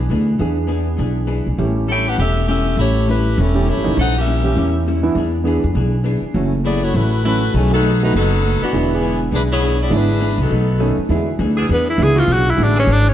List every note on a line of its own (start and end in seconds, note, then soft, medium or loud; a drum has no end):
0.09 0.37 D2 medium
0.09 0.29 E3 medium
0.09 0.29 B3 medium
0.09 0.29 D4 medium
0.09 0.30 G#4 medium
0.38 0.96 E2 medium
0.38 0.58 E3 soft
0.38 1.22 E3 soft
0.38 0.59 B3 soft
0.38 1.22 B3 medium
0.38 1.22 D4 soft
0.38 0.59 D4 soft
0.38 1.22 G#4 medium
0.38 0.60 G#4 soft
0.67 0.87 E3 medium
0.67 0.87 B3 medium
0.67 0.88 D4 medium
0.67 0.88 G#4 medium
0.97 1.43 B1 medium
0.97 1.17 E3 soft
0.97 1.18 B3 medium
0.97 1.18 D4 medium
0.97 1.18 G#4 medium
1.27 1.47 E3 medium
1.27 1.47 B3 medium
1.27 1.47 D4 medium
1.27 1.47 G#4 medium
1.46 1.58 B1 medium
1.58 2.15 A1 medium
1.58 1.77 A2 soft
1.58 2.41 E3 medium
1.58 1.78 G3 soft
1.58 2.41 A3 soft
1.58 2.41 C#4 medium
1.58 1.78 C#4 soft
1.58 1.78 E4 medium
1.58 2.41 G4 medium
1.87 2.06 A2 medium
1.87 2.07 G3 medium
1.87 2.07 C#4 medium
1.87 2.08 E4 medium
1.87 2.05 E4 medium
1.87 2.05 A4 medium
1.87 2.06 C#5 medium
1.87 2.06 G5 medium
2.07 2.19 D4 medium
2.07 2.18 G4 medium
2.07 2.19 B4 medium
2.07 2.19 F#5 medium
2.18 2.75 E1 medium
2.18 2.37 A2 soft
2.18 2.37 G3 soft
2.18 2.38 C#4 soft
2.18 2.47 C#4 medium
2.18 2.38 E4 medium
2.18 2.46 G4 medium
2.18 2.47 A4 medium
2.18 2.46 E5 medium
2.47 2.66 A2 medium
2.47 2.67 G3 medium
2.47 2.76 C#4 medium
2.47 2.67 C#4 medium
2.47 2.67 E4 medium
2.47 2.76 G4 medium
2.47 2.76 A4 medium
2.47 2.76 E5 medium
2.77 3.34 A1 medium
2.77 2.96 A2 soft
2.77 2.97 G3 soft
2.77 3.06 A3 medium
2.77 2.97 C#4 soft
2.77 3.06 E4 medium
2.77 2.98 E4 soft
2.77 3.06 G4 medium
2.77 3.06 C#5 loud
3.07 3.26 A2 medium
3.07 3.27 G3 medium
3.07 3.38 A3 medium
3.07 3.27 C#4 medium
3.07 3.27 E4 medium
3.07 3.38 E4 medium
3.07 3.38 G4 medium
3.07 3.38 B4 medium
3.37 3.74 E1 medium
3.37 3.56 A2 soft
3.37 3.56 G3 soft
3.37 3.57 C#4 medium
3.37 3.57 E4 medium
3.37 3.68 A4 medium
3.41 3.69 G3 medium
3.41 3.69 C#4 medium
3.41 3.69 E4 medium
3.55 3.66 E3 medium
3.55 3.66 A3 soft
3.55 3.66 C#4 medium
3.55 3.66 G4 medium
3.66 3.86 A2 medium
3.66 3.86 G3 soft
3.66 3.98 A3 medium
3.66 3.86 C#4 medium
3.66 3.86 E4 medium
3.66 3.98 E4 medium
3.66 3.98 G4 medium
3.66 3.98 C#5 medium
3.77 3.86 G1 medium
3.83 3.95 E3 medium
3.83 3.95 A#3 medium
3.83 3.95 C#4 medium
3.83 3.95 D#4 medium
3.87 3.96 A1 medium
3.96 4.53 A#1 medium
3.96 4.15 A#2 soft
3.96 4.16 G3 soft
3.96 4.16 C#4 soft
3.96 4.16 E4 soft
3.96 4.15 A4 medium
3.96 4.14 C5 medium
4.00 4.15 D#4 medium
4.00 4.15 F#5 loud
4.19 4.76 C#4 medium
4.19 4.76 G4 medium
4.19 4.76 A#4 medium
4.19 4.76 E5 medium
4.26 4.45 A#2 medium
4.26 4.45 G3 medium
4.26 4.45 C#4 medium
4.26 4.46 E4 medium
4.43 4.83 E3 medium
4.43 4.83 A#3 soft
4.43 4.83 C#4 soft
4.43 4.83 G4 medium
4.56 5.13 E2 medium
4.56 4.75 A#2 medium
4.56 4.76 G3 medium
4.56 4.76 C#4 medium
4.56 4.76 E4 medium
4.87 5.05 A#2 medium
4.87 5.06 G3 medium
4.87 5.06 C#4 medium
4.87 5.06 E4 medium
5.03 5.14 E3 medium
5.03 5.14 B3 medium
5.03 5.14 D4 medium
5.03 5.14 E4 medium
5.15 5.59 E2 medium
5.15 5.35 E3 soft
5.15 5.35 B3 soft
5.15 5.36 D4 medium
5.15 5.36 G#4 soft
5.44 5.60 E3 medium
5.44 5.64 E3 medium
5.44 5.61 B3 soft
5.44 5.65 B3 medium
5.44 5.61 D4 soft
5.44 5.65 D4 medium
5.44 5.61 G#4 medium
5.44 5.65 G#4 medium
5.64 5.75 F2 medium
5.74 6.19 B1 medium
5.74 5.94 E3 soft
5.74 5.94 B3 soft
5.74 5.95 D4 medium
5.74 5.95 G#4 medium
6.04 6.23 E3 medium
6.04 6.23 B3 medium
6.04 6.24 D4 medium
6.04 6.24 G#4 medium
6.22 muted upright bass stroke soft
6.33 6.91 F#1 medium
6.33 6.53 F#2 soft
6.33 6.53 E3 soft
6.33 6.51 E3 medium
6.33 6.54 A3 soft
6.33 6.51 A3 soft
6.33 6.51 C#4 medium
6.33 6.54 C#4 soft
6.33 6.51 F#4 medium
6.64 6.83 F#2 medium
6.64 6.83 E3 medium
6.64 6.84 A3 medium
6.64 6.81 B3 medium
6.64 6.84 C#4 medium
6.64 6.81 E4 medium
6.64 6.81 G#4 medium
6.64 6.81 D5 medium
6.82 6.94 A3 medium
6.82 6.94 E4 medium
6.82 6.94 F#4 medium
6.82 6.94 C#5 loud
6.94 7.51 A1 medium
6.94 7.13 F#2 soft
6.94 7.13 E3 soft
6.94 7.14 A3 soft
6.94 7.25 A3 medium
6.94 7.14 C#4 soft
6.94 7.25 E4 medium
6.94 7.25 F#4 medium
6.94 7.25 B4 medium
7.23 7.42 F#2 medium
7.23 7.43 E3 medium
7.23 7.40 E3 medium
7.23 7.43 A3 medium
7.23 7.40 A3 medium
7.23 7.52 A3 medium
7.23 7.43 C#4 medium
7.23 7.40 C#4 soft
7.23 7.52 E4 medium
7.23 7.40 F#4 medium
7.23 7.52 F#4 medium
7.23 7.53 B4 medium
7.52 8.10 B1 medium
7.52 7.72 B2 soft
7.52 7.72 F#3 soft
7.52 7.73 A3 soft
7.52 7.73 D#4 soft
7.56 7.73 E3 medium
7.56 7.72 A3 medium
7.56 7.73 C#4 medium
7.56 7.73 G#4 medium
7.71 7.82 D#3 medium
7.71 8.00 F#3 medium
7.71 7.82 A3 medium
7.71 7.82 B3 medium
7.71 8.00 B3 medium
7.71 8.00 D#4 medium
7.71 7.82 F#4 medium
7.71 8.00 A4 loud
7.83 8.02 B2 medium
7.83 8.02 F#3 medium
7.83 8.02 A3 medium
7.83 8.03 D#4 medium
8.03 8.13 D#3 medium
8.03 8.13 A3 medium
8.03 8.14 A3 medium
8.03 8.13 B3 medium
8.03 8.14 D#4 medium
8.03 8.13 F#4 medium
8.03 8.14 F#4 medium
8.03 8.14 B4 medium
8.13 8.57 F#1 medium
8.13 8.32 B2 soft
8.13 8.33 F#3 soft
8.13 8.58 F#3 medium
8.13 8.33 A3 soft
8.13 8.58 B3 medium
8.13 8.58 D#4 medium
8.13 8.33 D#4 soft
8.13 8.58 A4 medium
8.42 8.61 B2 medium
8.42 8.61 F#3 medium
8.42 8.61 A3 medium
8.42 8.62 D#4 medium
8.62 8.89 E3 medium
8.62 8.89 B3 medium
8.62 8.89 D4 medium
8.62 8.89 F#4 medium
8.62 muted upright bass stroke soft
8.73 9.29 E1 medium
8.73 9.54 D3 medium
8.73 8.91 E3 soft
8.73 9.54 G#3 soft
8.73 9.55 B3 medium
8.73 8.92 B3 soft
8.73 8.92 D4 soft
8.73 9.54 E4 medium
8.73 8.93 G#4 soft
8.92 9.21 E3 medium
8.92 9.21 B3 medium
8.92 9.21 D4 medium
8.92 9.21 G#4 medium
9.02 9.21 E3 medium
9.02 9.21 B3 medium
9.02 9.21 D4 medium
9.02 9.21 G#4 medium
9.31 9.88 B1 medium
9.31 9.50 E3 soft
9.31 9.42 G#3 medium
9.31 9.51 B3 medium
9.31 9.51 D4 medium
9.31 9.42 D4 medium
9.31 9.42 E4 medium
9.31 9.51 G#4 soft
9.31 9.42 B4 medium
9.52 9.78 B3 medium
9.52 9.79 E4 medium
9.52 9.78 G#4 medium
9.52 9.78 C#5 medium
9.61 9.80 E3 medium
9.61 9.80 B3 medium
9.61 9.81 D4 medium
9.61 9.81 G#4 medium
9.82 9.93 B3 medium
9.82 9.93 E4 medium
9.82 9.93 G#4 medium
9.82 9.92 D5 medium
9.90 10.35 G#1 medium
9.90 10.07 D3 medium
9.90 10.10 E3 soft
9.90 10.07 G#3 medium
9.90 10.07 B3 medium
9.90 10.10 B3 soft
9.90 10.11 D4 soft
9.90 10.40 D4 medium
9.90 10.07 E4 medium
9.90 10.11 G#4 soft
9.95 10.40 G#3 medium
9.95 10.40 E4 medium
9.95 10.40 B4 medium
10.21 10.40 E3 medium
10.21 10.40 B3 medium
10.21 10.40 D4 medium
10.21 10.41 G#4 medium
10.38 10.49 C2 medium
10.38 10.95 F#3 medium
10.38 10.95 B3 medium
10.38 10.95 D#4 medium
10.38 10.95 A4 medium
10.50 10.95 B1 medium
10.50 10.69 B2 soft
10.50 10.69 F#3 soft
10.50 10.70 A3 soft
10.50 10.70 D#4 soft
10.79 10.98 B2 medium
10.79 10.96 D#3 medium
10.79 10.99 F#3 medium
10.79 10.96 A3 medium
10.79 10.99 A3 medium
10.79 10.96 B3 soft
10.79 10.96 C#4 medium
10.79 10.99 D#4 medium
10.98 muted upright bass stroke soft
11.09 11.38 E2 medium
11.09 11.26 D3 soft
11.09 11.28 E3 soft
11.09 11.26 E3 soft
11.09 11.26 G#3 soft
11.09 11.29 B3 soft
11.09 11.26 B3 soft
11.09 11.29 D4 medium
11.09 11.26 E4 medium
11.09 11.30 G#4 soft
11.39 11.68 D2 medium
11.39 11.58 E3 medium
11.39 11.58 B3 medium
11.39 11.59 D4 medium
11.39 11.59 G#4 medium
11.57 11.66 E3 medium
11.57 11.65 B3 medium
11.57 11.66 D4 medium
11.57 11.65 G#4 loud
11.69 11.97 E2 medium
11.69 11.88 E3 medium
11.69 11.88 B3 medium
11.69 11.89 D4 medium
11.69 11.89 G#4 medium
11.73 11.88 B3 medium
11.90 12.05 E4 medium
11.98 12.27 C#2 medium
11.98 12.14 D3 medium
11.98 12.14 E3 soft
11.98 12.17 E3 medium
11.98 12.14 G#3 medium
11.98 12.14 B3 soft
11.98 12.18 B3 medium
11.98 12.18 D4 medium
11.98 12.14 E4 medium
11.98 12.18 G#4 medium
12.03 12.21 G#4 medium
12.16 12.24 E3 medium
12.16 12.25 B3 medium
12.16 12.25 D4 medium
12.16 12.35 F4 medium
12.16 12.24 F#4 medium
12.28 12.57 B1 medium
12.28 12.47 E3 soft
12.28 12.48 B3 soft
12.28 12.48 D4 soft
12.28 12.49 G#4 soft
12.33 12.52 F#4 medium
12.50 12.65 E4 medium
12.57 12.86 A1 medium
12.57 12.74 D3 soft
12.57 12.73 E3 soft
12.57 12.77 E3 medium
12.57 12.74 G#3 soft
12.57 12.74 B3 soft
12.57 12.78 B3 medium
12.57 12.78 D4 medium
12.57 12.74 E4 soft
12.57 12.78 G#4 medium
12.63 12.78 D4 medium
12.75 12.83 E3 medium
12.75 12.84 B3 medium
12.75 12.83 D4 medium
12.75 12.84 G#4 medium
12.79 12.94 C#4 medium
12.87 13.14 G#1 medium
12.87 13.06 E3 soft
12.87 13.07 B3 soft
12.87 13.07 D4 soft
12.87 13.08 G#4 medium
12.92 13.10 D4 loud
13.08 13.14 C#4 medium